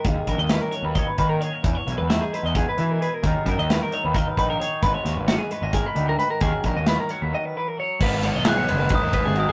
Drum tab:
CC |-------|-------|-------|-------|
RD |-------|-------|-------|-------|
HH |xxxxxxx|xxxxxxx|xxxxxxx|xxxxxxx|
SD |--o----|--o----|--o----|-oo-o--|
BD |oo--oo-|o---o--|oo--oo-|o---o--|

CC |-------|x------|
RD |-------|-xxxxxx|
HH |xxxx---|-------|
SD |--o----|-oo----|
BD |oo-----|o---oo-|